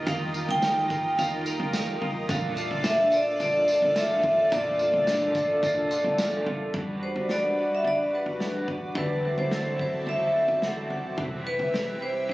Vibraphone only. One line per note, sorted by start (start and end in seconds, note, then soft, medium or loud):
0.08 0.51 F5 medium
0.51 0.90 G5 loud
0.91 1.19 G5 medium
1.19 1.46 F5 medium
1.47 1.98 F5 medium
2.30 2.87 F5 loud
2.85 3.14 E5 medium
3.14 3.40 D5 medium
3.41 3.67 D5 medium
3.69 3.97 D5 medium
3.96 4.53 E5 medium
4.53 6.42 D5 medium
7.03 7.31 C5 medium
7.31 7.73 D5 medium
7.75 7.87 E5 medium
7.88 8.12 D5 medium
8.15 8.65 B4 medium
8.97 9.39 B4 medium
9.39 9.77 C5 medium
9.81 10.09 C5 medium
10.09 10.65 E5 medium
10.64 11.02 F#5 medium
11.47 12.03 B4 medium
12.02 12.30 C5 medium